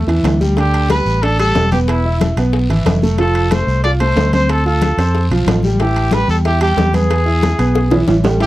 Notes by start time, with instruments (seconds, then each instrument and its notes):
0.07 fingered electric bass E2, grand piano E3 E4, high bongo, high conga, high timbale
0.23 fingered electric bass D2, high bongo, low bongo, high conga, high timbale, low timbale, short guiro
0.41 grand piano G3 G4, high conga, short guiro
0.57 grand piano D3 D4, trumpet G4, high bongo, high timbale, long guiro
0.74 high conga, high timbale
0.89 grand piano G3 G4, trumpet B4, high bongo, high conga, high timbale, low timbale, short guiro
1.06 fingered electric bass A1, short guiro
1.23 grand piano D4 D5, trumpet A4, high bongo, high conga, high timbale, long guiro
1.39 grand piano G3 G4, trumpet A4, high conga, high timbale
1.55 fingered electric bass E1, high bongo, low bongo, high conga, low timbale, short guiro
1.71 grand piano B3 B4, trumpet G4, high conga, high timbale, short guiro
1.88 trumpet E4, high bongo, high conga, high timbale, long guiro
2.04 grand piano E4 E5, high bongo, high conga
2.21 high bongo, high conga, high timbale, low timbale, short guiro
2.37 fingered electric bass B1, grand piano B3 B4, high bongo, high conga, high timbale, short guiro
2.53 high bongo, high conga, long guiro
2.69 fingered electric bass G#1, grand piano E3 E4, high bongo, high conga, high timbale
2.86 fingered electric bass F1, high bongo, low bongo, high conga, high timbale, low timbale, short guiro
3.02 grand piano A3 A4, high conga, short guiro
3.18 grand piano F3 F4, trumpet A4, high bongo, high timbale, long guiro
3.35 high conga, high timbale
3.51 grand piano A3 A4, trumpet C5, high bongo, high conga, high timbale, low timbale, short guiro
3.67 fingered electric bass C2, short guiro
3.84 grand piano F4 F5, trumpet D5, high bongo, high conga, high timbale, long guiro
4.00 grand piano A3 A4, trumpet C5, high conga, high timbale
4.16 fingered electric bass D2, high bongo, low bongo, high conga, low timbale, short guiro
4.33 grand piano C4 C5, trumpet C5, high conga, high timbale, short guiro
4.49 trumpet A4, high bongo, high timbale, long guiro
4.66 grand piano F4 F5, trumpet A4, high bongo, high conga
4.82 high bongo, high conga, high timbale, low timbale, short guiro
4.97 fingered electric bass F2, grand piano C4 C5, high bongo, high conga, high timbale, short guiro
5.15 high bongo, high conga, long guiro
5.30 fingered electric bass B1, grand piano F3 F4, high bongo, high conga, high timbale
5.46 fingered electric bass A1, high bongo, low bongo, high conga, high timbale, low timbale, short guiro
5.63 grand piano G3 G4, high conga, short guiro
5.79 grand piano E3 E4, trumpet G4, high bongo, high conga, high timbale, long guiro
5.95 high conga, high timbale
6.11 grand piano G3 G4, trumpet B4, high bongo, high conga, high timbale, low timbale, short guiro
6.28 fingered electric bass E2, trumpet A4, short guiro
6.45 grand piano E4 E5, trumpet G4, high bongo, high conga, high timbale, long guiro
6.61 grand piano G3 G4, trumpet G4, high conga, high timbale
6.77 fingered electric bass E2, high bongo, low bongo, high conga, low timbale, short guiro
6.94 grand piano B3 B4, trumpet G#4, high conga, high timbale, short guiro
7.10 high bongo, high timbale, long guiro
7.26 grand piano E4 E5, high bongo, high conga
7.43 high bongo, high conga, high timbale, low timbale, short guiro
7.59 fingered electric bass B1, grand piano B3 B4, high bongo, high conga, high timbale, short guiro
7.75 high bongo, high conga, long guiro
7.91 grand piano E3 E4, low bongo, high conga, high timbale
8.07 fingered electric bass A1, low bongo, high conga, high timbale, short guiro
8.24 grand piano G3 G4, low bongo, high conga, low timbale, short guiro
8.40 grand piano E3 E4 E5, trumpet G4, high bongo, high conga, high timbale, long guiro